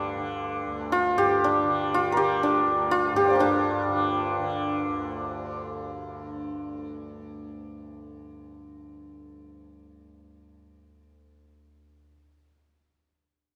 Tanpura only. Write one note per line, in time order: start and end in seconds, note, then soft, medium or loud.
0.00 0.66 D2 medium
0.00 1.16 G2 medium
0.00 0.16 D3 medium
0.16 1.65 D3 medium
0.66 2.64 D2 medium
1.16 3.12 G2 medium
1.65 2.15 D3 medium
2.15 3.90 D3 medium
2.64 4.88 D2 medium
3.12 3.42 G2 medium
3.42 10.57 G2 medium
3.90 4.39 D3 medium
4.39 11.54 D3 medium
4.89 12.04 D2 medium